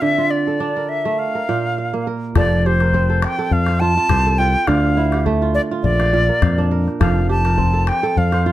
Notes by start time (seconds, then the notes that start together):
Already playing: C4 F4 C5
0.01 D3 E5
0.18 F4
0.31 D5
0.47 A4
0.60 D4
0.76 A#4
0.89 E5
1.05 A3
1.19 F5
1.35 A#4
1.49 A#2 G5
1.78 F5
1.93 A#3
2.07 A#4
2.35 F1 F3 A4 D5, calabash thump, calabash click
2.66 G4 C5
2.80 A#4, calabash click
2.93 C4, calabash thump, calabash click
3.10 A4
3.22 G5, calabash click
3.39 A4
3.51 F2 F5, calabash thump
3.67 C5, calabash click
3.80 F4 A5
3.97 F4
4.09 C2 C5, calabash thump, calabash click
4.26 A4
4.38 F4 G5
4.54 calabash click
4.67 D2 D3 F4 F5, calabash thump, calabash click
4.97 E4
5.12 G4, calabash click
5.26 A3, calabash thump, calabash click
5.42 F4
5.54 D5
5.71 F4
5.83 A#1 D5, calabash thump
6.00 F5, calabash click
6.13 A#2
6.29 A#4
6.42 F2 F5, calabash thump, calabash click
6.58 D4
6.71 A#4
6.88 calabash click
7.00 F1 F3 A4 F5, calabash thump, calabash click
7.29 G4 A5
7.45 A#4, calabash click
7.58 C4, calabash thump, calabash click
7.73 A4
7.87 G5, calabash click
8.03 A4
8.16 F2 F5, calabash thump
8.32 C5, calabash click
8.46 F4